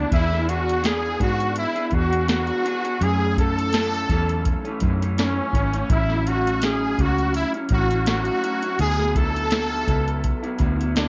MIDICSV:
0, 0, Header, 1, 5, 480
1, 0, Start_track
1, 0, Key_signature, 3, "major"
1, 0, Tempo, 722804
1, 76, Time_signature, 4, 2, 24, 8
1, 7359, End_track
2, 0, Start_track
2, 0, Title_t, "Trumpet"
2, 0, Program_c, 0, 56
2, 86, Note_on_c, 0, 64, 87
2, 323, Note_on_c, 0, 66, 82
2, 333, Note_off_c, 0, 64, 0
2, 567, Note_on_c, 0, 68, 94
2, 577, Note_off_c, 0, 66, 0
2, 802, Note_off_c, 0, 68, 0
2, 806, Note_on_c, 0, 66, 89
2, 1025, Note_off_c, 0, 66, 0
2, 1049, Note_on_c, 0, 64, 91
2, 1288, Note_on_c, 0, 66, 83
2, 1298, Note_off_c, 0, 64, 0
2, 1522, Note_off_c, 0, 66, 0
2, 1528, Note_on_c, 0, 66, 92
2, 2010, Note_on_c, 0, 68, 104
2, 2020, Note_off_c, 0, 66, 0
2, 2243, Note_off_c, 0, 68, 0
2, 2249, Note_on_c, 0, 69, 99
2, 3176, Note_off_c, 0, 69, 0
2, 3446, Note_on_c, 0, 61, 76
2, 3895, Note_off_c, 0, 61, 0
2, 3926, Note_on_c, 0, 64, 90
2, 4168, Note_on_c, 0, 66, 80
2, 4178, Note_off_c, 0, 64, 0
2, 4411, Note_on_c, 0, 68, 81
2, 4421, Note_off_c, 0, 66, 0
2, 4653, Note_on_c, 0, 66, 88
2, 4663, Note_off_c, 0, 68, 0
2, 4883, Note_off_c, 0, 66, 0
2, 4887, Note_on_c, 0, 64, 83
2, 4992, Note_off_c, 0, 64, 0
2, 5130, Note_on_c, 0, 66, 84
2, 5347, Note_off_c, 0, 66, 0
2, 5368, Note_on_c, 0, 66, 88
2, 5816, Note_off_c, 0, 66, 0
2, 5845, Note_on_c, 0, 68, 100
2, 6082, Note_on_c, 0, 69, 101
2, 6092, Note_off_c, 0, 68, 0
2, 7040, Note_off_c, 0, 69, 0
2, 7287, Note_on_c, 0, 62, 77
2, 7359, Note_off_c, 0, 62, 0
2, 7359, End_track
3, 0, Start_track
3, 0, Title_t, "Clean electric guitar"
3, 0, Program_c, 1, 27
3, 0, Note_on_c, 1, 54, 41
3, 0, Note_on_c, 1, 64, 53
3, 67, Note_off_c, 1, 54, 0
3, 70, Note_on_c, 1, 52, 68
3, 72, Note_off_c, 1, 64, 0
3, 74, Note_on_c, 1, 59, 72
3, 78, Note_on_c, 1, 62, 73
3, 82, Note_on_c, 1, 68, 79
3, 300, Note_off_c, 1, 52, 0
3, 308, Note_off_c, 1, 59, 0
3, 308, Note_on_c, 1, 52, 59
3, 313, Note_off_c, 1, 62, 0
3, 316, Note_on_c, 1, 59, 62
3, 319, Note_off_c, 1, 68, 0
3, 321, Note_on_c, 1, 62, 66
3, 327, Note_on_c, 1, 68, 59
3, 541, Note_off_c, 1, 52, 0
3, 546, Note_off_c, 1, 59, 0
3, 549, Note_on_c, 1, 52, 74
3, 550, Note_off_c, 1, 62, 0
3, 553, Note_off_c, 1, 68, 0
3, 554, Note_on_c, 1, 59, 75
3, 558, Note_on_c, 1, 62, 73
3, 561, Note_on_c, 1, 68, 81
3, 779, Note_off_c, 1, 52, 0
3, 787, Note_off_c, 1, 59, 0
3, 787, Note_on_c, 1, 52, 57
3, 792, Note_off_c, 1, 62, 0
3, 795, Note_on_c, 1, 59, 58
3, 799, Note_off_c, 1, 68, 0
3, 800, Note_on_c, 1, 62, 61
3, 806, Note_on_c, 1, 68, 59
3, 1155, Note_off_c, 1, 68, 0
3, 1163, Note_on_c, 1, 68, 51
3, 1164, Note_off_c, 1, 52, 0
3, 1166, Note_off_c, 1, 62, 0
3, 1168, Note_off_c, 1, 59, 0
3, 1174, Note_on_c, 1, 62, 50
3, 1183, Note_on_c, 1, 59, 46
3, 1266, Note_off_c, 1, 59, 0
3, 1268, Note_on_c, 1, 52, 63
3, 1272, Note_off_c, 1, 62, 0
3, 1274, Note_off_c, 1, 68, 0
3, 1274, Note_on_c, 1, 59, 62
3, 1280, Note_on_c, 1, 62, 58
3, 1285, Note_on_c, 1, 68, 64
3, 1393, Note_off_c, 1, 68, 0
3, 1401, Note_on_c, 1, 68, 53
3, 1404, Note_off_c, 1, 52, 0
3, 1405, Note_off_c, 1, 62, 0
3, 1407, Note_off_c, 1, 59, 0
3, 1413, Note_on_c, 1, 62, 46
3, 1420, Note_on_c, 1, 59, 42
3, 1508, Note_off_c, 1, 59, 0
3, 1510, Note_on_c, 1, 52, 73
3, 1512, Note_off_c, 1, 62, 0
3, 1513, Note_off_c, 1, 68, 0
3, 1516, Note_on_c, 1, 59, 72
3, 1520, Note_on_c, 1, 62, 75
3, 1523, Note_on_c, 1, 68, 75
3, 1742, Note_off_c, 1, 52, 0
3, 1749, Note_off_c, 1, 59, 0
3, 1750, Note_on_c, 1, 52, 53
3, 1754, Note_off_c, 1, 62, 0
3, 1757, Note_on_c, 1, 59, 58
3, 1760, Note_off_c, 1, 68, 0
3, 1762, Note_on_c, 1, 62, 61
3, 1768, Note_on_c, 1, 68, 55
3, 1872, Note_off_c, 1, 68, 0
3, 1880, Note_on_c, 1, 68, 52
3, 1882, Note_off_c, 1, 62, 0
3, 1885, Note_off_c, 1, 52, 0
3, 1889, Note_off_c, 1, 59, 0
3, 1890, Note_on_c, 1, 62, 45
3, 1896, Note_on_c, 1, 59, 39
3, 1992, Note_off_c, 1, 68, 0
3, 1992, Note_on_c, 1, 42, 67
3, 1995, Note_on_c, 1, 52, 68
3, 1997, Note_off_c, 1, 59, 0
3, 1997, Note_off_c, 1, 62, 0
3, 1999, Note_on_c, 1, 57, 82
3, 2002, Note_on_c, 1, 61, 82
3, 2222, Note_off_c, 1, 42, 0
3, 2230, Note_off_c, 1, 52, 0
3, 2230, Note_on_c, 1, 42, 55
3, 2235, Note_off_c, 1, 57, 0
3, 2238, Note_on_c, 1, 52, 53
3, 2239, Note_off_c, 1, 61, 0
3, 2243, Note_on_c, 1, 57, 59
3, 2246, Note_on_c, 1, 61, 67
3, 2464, Note_off_c, 1, 42, 0
3, 2470, Note_off_c, 1, 52, 0
3, 2472, Note_on_c, 1, 42, 64
3, 2473, Note_off_c, 1, 57, 0
3, 2477, Note_off_c, 1, 61, 0
3, 2477, Note_on_c, 1, 52, 79
3, 2481, Note_on_c, 1, 57, 71
3, 2485, Note_on_c, 1, 61, 73
3, 2705, Note_off_c, 1, 42, 0
3, 2712, Note_off_c, 1, 52, 0
3, 2713, Note_on_c, 1, 42, 58
3, 2719, Note_off_c, 1, 57, 0
3, 2719, Note_on_c, 1, 52, 63
3, 2721, Note_off_c, 1, 61, 0
3, 2727, Note_on_c, 1, 57, 64
3, 2731, Note_on_c, 1, 61, 63
3, 3077, Note_off_c, 1, 61, 0
3, 3085, Note_on_c, 1, 61, 55
3, 3087, Note_off_c, 1, 42, 0
3, 3088, Note_off_c, 1, 57, 0
3, 3090, Note_off_c, 1, 52, 0
3, 3096, Note_on_c, 1, 57, 53
3, 3103, Note_on_c, 1, 52, 45
3, 3193, Note_off_c, 1, 52, 0
3, 3193, Note_on_c, 1, 42, 66
3, 3195, Note_off_c, 1, 61, 0
3, 3196, Note_off_c, 1, 57, 0
3, 3201, Note_on_c, 1, 52, 64
3, 3204, Note_on_c, 1, 57, 71
3, 3209, Note_on_c, 1, 61, 76
3, 3320, Note_off_c, 1, 61, 0
3, 3327, Note_off_c, 1, 42, 0
3, 3328, Note_on_c, 1, 61, 50
3, 3330, Note_off_c, 1, 57, 0
3, 3331, Note_off_c, 1, 52, 0
3, 3338, Note_on_c, 1, 57, 47
3, 3346, Note_on_c, 1, 52, 42
3, 3431, Note_off_c, 1, 52, 0
3, 3434, Note_on_c, 1, 42, 66
3, 3435, Note_off_c, 1, 57, 0
3, 3436, Note_off_c, 1, 61, 0
3, 3439, Note_on_c, 1, 52, 74
3, 3443, Note_on_c, 1, 57, 71
3, 3448, Note_on_c, 1, 61, 77
3, 3663, Note_off_c, 1, 42, 0
3, 3669, Note_off_c, 1, 52, 0
3, 3671, Note_on_c, 1, 42, 55
3, 3676, Note_off_c, 1, 57, 0
3, 3677, Note_on_c, 1, 52, 54
3, 3680, Note_off_c, 1, 61, 0
3, 3684, Note_on_c, 1, 57, 57
3, 3688, Note_on_c, 1, 61, 57
3, 3794, Note_off_c, 1, 61, 0
3, 3802, Note_on_c, 1, 61, 45
3, 3805, Note_off_c, 1, 57, 0
3, 3806, Note_off_c, 1, 42, 0
3, 3809, Note_off_c, 1, 52, 0
3, 3813, Note_on_c, 1, 57, 47
3, 3822, Note_on_c, 1, 52, 38
3, 3913, Note_off_c, 1, 61, 0
3, 3913, Note_on_c, 1, 45, 64
3, 3915, Note_off_c, 1, 52, 0
3, 3918, Note_off_c, 1, 57, 0
3, 3918, Note_on_c, 1, 54, 68
3, 3921, Note_on_c, 1, 61, 78
3, 3925, Note_on_c, 1, 64, 76
3, 4146, Note_off_c, 1, 45, 0
3, 4152, Note_off_c, 1, 54, 0
3, 4154, Note_on_c, 1, 45, 56
3, 4159, Note_off_c, 1, 61, 0
3, 4160, Note_on_c, 1, 54, 52
3, 4161, Note_off_c, 1, 64, 0
3, 4167, Note_on_c, 1, 61, 59
3, 4171, Note_on_c, 1, 64, 55
3, 4384, Note_off_c, 1, 45, 0
3, 4390, Note_off_c, 1, 54, 0
3, 4392, Note_on_c, 1, 45, 72
3, 4394, Note_off_c, 1, 61, 0
3, 4398, Note_off_c, 1, 64, 0
3, 4398, Note_on_c, 1, 54, 67
3, 4402, Note_on_c, 1, 61, 68
3, 4406, Note_on_c, 1, 64, 82
3, 4626, Note_off_c, 1, 45, 0
3, 4633, Note_off_c, 1, 54, 0
3, 4634, Note_on_c, 1, 45, 55
3, 4639, Note_off_c, 1, 61, 0
3, 4641, Note_off_c, 1, 64, 0
3, 4641, Note_on_c, 1, 54, 61
3, 4646, Note_on_c, 1, 61, 61
3, 4651, Note_on_c, 1, 64, 62
3, 4994, Note_off_c, 1, 64, 0
3, 5002, Note_on_c, 1, 64, 49
3, 5004, Note_off_c, 1, 61, 0
3, 5007, Note_off_c, 1, 45, 0
3, 5011, Note_off_c, 1, 54, 0
3, 5012, Note_on_c, 1, 61, 47
3, 5020, Note_on_c, 1, 54, 40
3, 5106, Note_off_c, 1, 54, 0
3, 5106, Note_on_c, 1, 45, 57
3, 5111, Note_off_c, 1, 61, 0
3, 5114, Note_off_c, 1, 64, 0
3, 5114, Note_on_c, 1, 54, 62
3, 5119, Note_on_c, 1, 61, 61
3, 5125, Note_on_c, 1, 64, 68
3, 5232, Note_off_c, 1, 64, 0
3, 5240, Note_on_c, 1, 64, 45
3, 5244, Note_off_c, 1, 45, 0
3, 5244, Note_off_c, 1, 61, 0
3, 5247, Note_off_c, 1, 54, 0
3, 5252, Note_on_c, 1, 61, 43
3, 5258, Note_on_c, 1, 54, 39
3, 5349, Note_off_c, 1, 54, 0
3, 5352, Note_off_c, 1, 64, 0
3, 5352, Note_on_c, 1, 45, 70
3, 5353, Note_off_c, 1, 61, 0
3, 5357, Note_on_c, 1, 54, 69
3, 5361, Note_on_c, 1, 61, 77
3, 5363, Note_on_c, 1, 64, 77
3, 5581, Note_off_c, 1, 45, 0
3, 5588, Note_off_c, 1, 54, 0
3, 5589, Note_on_c, 1, 45, 53
3, 5593, Note_off_c, 1, 61, 0
3, 5596, Note_on_c, 1, 54, 52
3, 5600, Note_off_c, 1, 64, 0
3, 5601, Note_on_c, 1, 61, 57
3, 5607, Note_on_c, 1, 64, 59
3, 5716, Note_off_c, 1, 64, 0
3, 5724, Note_on_c, 1, 64, 49
3, 5725, Note_off_c, 1, 45, 0
3, 5726, Note_off_c, 1, 61, 0
3, 5728, Note_off_c, 1, 54, 0
3, 5734, Note_on_c, 1, 61, 46
3, 5743, Note_on_c, 1, 54, 40
3, 5830, Note_off_c, 1, 54, 0
3, 5831, Note_on_c, 1, 50, 68
3, 5835, Note_off_c, 1, 64, 0
3, 5838, Note_on_c, 1, 54, 74
3, 5839, Note_off_c, 1, 61, 0
3, 5841, Note_on_c, 1, 59, 76
3, 5846, Note_on_c, 1, 64, 76
3, 6061, Note_off_c, 1, 50, 0
3, 6068, Note_off_c, 1, 54, 0
3, 6069, Note_on_c, 1, 50, 59
3, 6074, Note_off_c, 1, 59, 0
3, 6076, Note_on_c, 1, 54, 60
3, 6080, Note_off_c, 1, 64, 0
3, 6082, Note_on_c, 1, 59, 55
3, 6088, Note_on_c, 1, 64, 60
3, 6303, Note_off_c, 1, 50, 0
3, 6308, Note_off_c, 1, 54, 0
3, 6311, Note_off_c, 1, 59, 0
3, 6311, Note_on_c, 1, 50, 74
3, 6315, Note_off_c, 1, 64, 0
3, 6316, Note_on_c, 1, 54, 72
3, 6319, Note_on_c, 1, 59, 76
3, 6323, Note_on_c, 1, 64, 73
3, 6546, Note_off_c, 1, 54, 0
3, 6552, Note_off_c, 1, 59, 0
3, 6554, Note_off_c, 1, 50, 0
3, 6554, Note_on_c, 1, 54, 57
3, 6556, Note_off_c, 1, 64, 0
3, 6560, Note_on_c, 1, 59, 63
3, 6564, Note_on_c, 1, 64, 62
3, 6915, Note_off_c, 1, 64, 0
3, 6923, Note_on_c, 1, 64, 59
3, 6926, Note_off_c, 1, 59, 0
3, 6928, Note_off_c, 1, 54, 0
3, 6934, Note_on_c, 1, 59, 58
3, 6941, Note_on_c, 1, 54, 43
3, 7026, Note_off_c, 1, 54, 0
3, 7027, Note_on_c, 1, 50, 66
3, 7031, Note_off_c, 1, 59, 0
3, 7034, Note_off_c, 1, 64, 0
3, 7034, Note_on_c, 1, 54, 65
3, 7039, Note_on_c, 1, 59, 70
3, 7044, Note_on_c, 1, 64, 80
3, 7150, Note_off_c, 1, 64, 0
3, 7158, Note_on_c, 1, 64, 50
3, 7159, Note_off_c, 1, 59, 0
3, 7164, Note_off_c, 1, 50, 0
3, 7167, Note_off_c, 1, 54, 0
3, 7167, Note_on_c, 1, 59, 46
3, 7176, Note_on_c, 1, 54, 40
3, 7269, Note_off_c, 1, 54, 0
3, 7271, Note_on_c, 1, 50, 72
3, 7272, Note_off_c, 1, 64, 0
3, 7274, Note_off_c, 1, 59, 0
3, 7277, Note_on_c, 1, 54, 74
3, 7282, Note_on_c, 1, 59, 80
3, 7285, Note_on_c, 1, 64, 81
3, 7359, Note_off_c, 1, 50, 0
3, 7359, Note_off_c, 1, 54, 0
3, 7359, Note_off_c, 1, 59, 0
3, 7359, Note_off_c, 1, 64, 0
3, 7359, End_track
4, 0, Start_track
4, 0, Title_t, "Fingered electric bass"
4, 0, Program_c, 2, 33
4, 76, Note_on_c, 2, 40, 101
4, 770, Note_off_c, 2, 40, 0
4, 797, Note_on_c, 2, 44, 75
4, 1094, Note_off_c, 2, 44, 0
4, 1276, Note_on_c, 2, 40, 92
4, 1660, Note_off_c, 2, 40, 0
4, 1998, Note_on_c, 2, 42, 93
4, 2691, Note_off_c, 2, 42, 0
4, 2719, Note_on_c, 2, 40, 81
4, 3015, Note_off_c, 2, 40, 0
4, 3197, Note_on_c, 2, 42, 88
4, 3581, Note_off_c, 2, 42, 0
4, 3673, Note_on_c, 2, 32, 81
4, 3866, Note_off_c, 2, 32, 0
4, 3918, Note_on_c, 2, 33, 99
4, 4611, Note_off_c, 2, 33, 0
4, 4636, Note_on_c, 2, 37, 79
4, 4934, Note_off_c, 2, 37, 0
4, 5118, Note_on_c, 2, 33, 94
4, 5502, Note_off_c, 2, 33, 0
4, 5838, Note_on_c, 2, 38, 92
4, 6531, Note_off_c, 2, 38, 0
4, 6556, Note_on_c, 2, 37, 83
4, 6854, Note_off_c, 2, 37, 0
4, 7039, Note_on_c, 2, 38, 88
4, 7359, Note_off_c, 2, 38, 0
4, 7359, End_track
5, 0, Start_track
5, 0, Title_t, "Drums"
5, 77, Note_on_c, 9, 36, 105
5, 79, Note_on_c, 9, 42, 72
5, 144, Note_off_c, 9, 36, 0
5, 146, Note_off_c, 9, 42, 0
5, 216, Note_on_c, 9, 38, 30
5, 282, Note_off_c, 9, 38, 0
5, 324, Note_on_c, 9, 42, 69
5, 391, Note_off_c, 9, 42, 0
5, 460, Note_on_c, 9, 42, 55
5, 527, Note_off_c, 9, 42, 0
5, 556, Note_on_c, 9, 42, 84
5, 565, Note_on_c, 9, 38, 102
5, 622, Note_off_c, 9, 42, 0
5, 631, Note_off_c, 9, 38, 0
5, 797, Note_on_c, 9, 36, 72
5, 800, Note_on_c, 9, 42, 58
5, 864, Note_off_c, 9, 36, 0
5, 867, Note_off_c, 9, 42, 0
5, 931, Note_on_c, 9, 42, 44
5, 997, Note_off_c, 9, 42, 0
5, 1034, Note_on_c, 9, 42, 76
5, 1101, Note_off_c, 9, 42, 0
5, 1167, Note_on_c, 9, 42, 29
5, 1233, Note_off_c, 9, 42, 0
5, 1267, Note_on_c, 9, 42, 75
5, 1277, Note_on_c, 9, 36, 80
5, 1333, Note_off_c, 9, 42, 0
5, 1344, Note_off_c, 9, 36, 0
5, 1413, Note_on_c, 9, 42, 51
5, 1480, Note_off_c, 9, 42, 0
5, 1518, Note_on_c, 9, 42, 74
5, 1524, Note_on_c, 9, 38, 110
5, 1584, Note_off_c, 9, 42, 0
5, 1590, Note_off_c, 9, 38, 0
5, 1643, Note_on_c, 9, 42, 30
5, 1709, Note_off_c, 9, 42, 0
5, 1766, Note_on_c, 9, 42, 64
5, 1832, Note_off_c, 9, 42, 0
5, 1892, Note_on_c, 9, 42, 56
5, 1958, Note_off_c, 9, 42, 0
5, 2002, Note_on_c, 9, 42, 79
5, 2068, Note_off_c, 9, 42, 0
5, 2239, Note_on_c, 9, 36, 89
5, 2245, Note_on_c, 9, 42, 67
5, 2305, Note_off_c, 9, 36, 0
5, 2311, Note_off_c, 9, 42, 0
5, 2380, Note_on_c, 9, 42, 56
5, 2446, Note_off_c, 9, 42, 0
5, 2474, Note_on_c, 9, 42, 82
5, 2483, Note_on_c, 9, 38, 98
5, 2541, Note_off_c, 9, 42, 0
5, 2550, Note_off_c, 9, 38, 0
5, 2616, Note_on_c, 9, 42, 33
5, 2683, Note_off_c, 9, 42, 0
5, 2718, Note_on_c, 9, 36, 70
5, 2720, Note_on_c, 9, 42, 53
5, 2784, Note_off_c, 9, 36, 0
5, 2786, Note_off_c, 9, 42, 0
5, 2851, Note_on_c, 9, 42, 42
5, 2917, Note_off_c, 9, 42, 0
5, 2957, Note_on_c, 9, 42, 77
5, 2960, Note_on_c, 9, 36, 77
5, 3023, Note_off_c, 9, 42, 0
5, 3026, Note_off_c, 9, 36, 0
5, 3088, Note_on_c, 9, 42, 28
5, 3154, Note_off_c, 9, 42, 0
5, 3189, Note_on_c, 9, 42, 76
5, 3198, Note_on_c, 9, 36, 76
5, 3255, Note_off_c, 9, 42, 0
5, 3265, Note_off_c, 9, 36, 0
5, 3336, Note_on_c, 9, 42, 51
5, 3402, Note_off_c, 9, 42, 0
5, 3440, Note_on_c, 9, 42, 76
5, 3446, Note_on_c, 9, 38, 97
5, 3507, Note_off_c, 9, 42, 0
5, 3512, Note_off_c, 9, 38, 0
5, 3674, Note_on_c, 9, 36, 80
5, 3685, Note_on_c, 9, 42, 65
5, 3740, Note_off_c, 9, 36, 0
5, 3751, Note_off_c, 9, 42, 0
5, 3810, Note_on_c, 9, 42, 58
5, 3876, Note_off_c, 9, 42, 0
5, 3917, Note_on_c, 9, 36, 99
5, 3919, Note_on_c, 9, 42, 75
5, 3984, Note_off_c, 9, 36, 0
5, 3985, Note_off_c, 9, 42, 0
5, 4052, Note_on_c, 9, 38, 28
5, 4119, Note_off_c, 9, 38, 0
5, 4163, Note_on_c, 9, 42, 70
5, 4230, Note_off_c, 9, 42, 0
5, 4298, Note_on_c, 9, 42, 54
5, 4364, Note_off_c, 9, 42, 0
5, 4393, Note_on_c, 9, 42, 89
5, 4402, Note_on_c, 9, 38, 95
5, 4459, Note_off_c, 9, 42, 0
5, 4468, Note_off_c, 9, 38, 0
5, 4637, Note_on_c, 9, 36, 74
5, 4639, Note_on_c, 9, 42, 56
5, 4703, Note_off_c, 9, 36, 0
5, 4705, Note_off_c, 9, 42, 0
5, 4770, Note_on_c, 9, 42, 45
5, 4836, Note_off_c, 9, 42, 0
5, 4875, Note_on_c, 9, 42, 76
5, 4942, Note_off_c, 9, 42, 0
5, 5008, Note_on_c, 9, 42, 31
5, 5074, Note_off_c, 9, 42, 0
5, 5106, Note_on_c, 9, 42, 74
5, 5117, Note_on_c, 9, 36, 76
5, 5172, Note_off_c, 9, 42, 0
5, 5184, Note_off_c, 9, 36, 0
5, 5251, Note_on_c, 9, 42, 48
5, 5317, Note_off_c, 9, 42, 0
5, 5355, Note_on_c, 9, 42, 82
5, 5360, Note_on_c, 9, 38, 101
5, 5421, Note_off_c, 9, 42, 0
5, 5427, Note_off_c, 9, 38, 0
5, 5478, Note_on_c, 9, 42, 33
5, 5545, Note_off_c, 9, 42, 0
5, 5602, Note_on_c, 9, 42, 63
5, 5668, Note_off_c, 9, 42, 0
5, 5726, Note_on_c, 9, 42, 57
5, 5792, Note_off_c, 9, 42, 0
5, 5835, Note_on_c, 9, 42, 82
5, 5902, Note_off_c, 9, 42, 0
5, 5972, Note_on_c, 9, 38, 30
5, 6039, Note_off_c, 9, 38, 0
5, 6077, Note_on_c, 9, 36, 91
5, 6081, Note_on_c, 9, 42, 65
5, 6144, Note_off_c, 9, 36, 0
5, 6147, Note_off_c, 9, 42, 0
5, 6218, Note_on_c, 9, 42, 53
5, 6284, Note_off_c, 9, 42, 0
5, 6312, Note_on_c, 9, 42, 86
5, 6321, Note_on_c, 9, 38, 105
5, 6379, Note_off_c, 9, 42, 0
5, 6388, Note_off_c, 9, 38, 0
5, 6557, Note_on_c, 9, 36, 76
5, 6559, Note_on_c, 9, 42, 58
5, 6624, Note_off_c, 9, 36, 0
5, 6626, Note_off_c, 9, 42, 0
5, 6691, Note_on_c, 9, 42, 48
5, 6757, Note_off_c, 9, 42, 0
5, 6798, Note_on_c, 9, 42, 78
5, 6800, Note_on_c, 9, 36, 77
5, 6864, Note_off_c, 9, 42, 0
5, 6866, Note_off_c, 9, 36, 0
5, 6930, Note_on_c, 9, 42, 29
5, 6996, Note_off_c, 9, 42, 0
5, 7030, Note_on_c, 9, 42, 75
5, 7039, Note_on_c, 9, 36, 75
5, 7096, Note_off_c, 9, 42, 0
5, 7105, Note_off_c, 9, 36, 0
5, 7177, Note_on_c, 9, 42, 50
5, 7244, Note_off_c, 9, 42, 0
5, 7278, Note_on_c, 9, 42, 77
5, 7284, Note_on_c, 9, 38, 110
5, 7345, Note_off_c, 9, 42, 0
5, 7350, Note_off_c, 9, 38, 0
5, 7359, End_track
0, 0, End_of_file